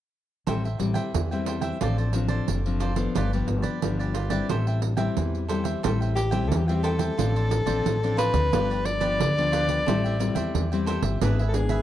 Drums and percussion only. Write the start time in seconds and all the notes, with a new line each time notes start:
0.47 pandeiro
0.65 pandeiro
0.80 pandeiro
0.95 pandeiro
1.14 pandeiro
1.32 pandeiro
1.46 pandeiro
1.62 pandeiro
1.81 pandeiro
1.98 pandeiro
2.13 pandeiro
2.28 pandeiro
2.48 pandeiro
2.66 pandeiro
2.80 pandeiro
2.96 pandeiro
3.15 pandeiro
3.33 pandeiro
3.48 pandeiro
3.63 pandeiro
3.82 pandeiro
4.00 pandeiro
4.15 pandeiro
4.30 pandeiro
4.49 pandeiro
4.67 pandeiro
4.82 pandeiro
4.97 pandeiro
5.17 pandeiro
5.35 pandeiro
5.49 pandeiro
5.65 pandeiro
5.84 pandeiro
6.02 pandeiro
6.17 pandeiro
6.32 pandeiro
6.52 pandeiro
6.69 pandeiro
6.84 pandeiro
6.99 pandeiro
7.19 pandeiro
7.36 pandeiro
7.51 pandeiro
7.67 pandeiro
7.86 pandeiro
8.04 pandeiro
8.18 pandeiro
8.34 pandeiro
8.53 pandeiro
8.71 pandeiro
8.85 pandeiro
9.01 pandeiro
9.20 pandeiro
9.38 pandeiro
9.53 pandeiro
9.69 pandeiro
9.88 pandeiro
10.06 pandeiro
10.20 pandeiro
10.36 pandeiro
10.55 pandeiro
10.73 pandeiro
10.87 pandeiro
11.03 pandeiro
11.21 pandeiro
11.39 pandeiro
11.54 pandeiro
11.69 pandeiro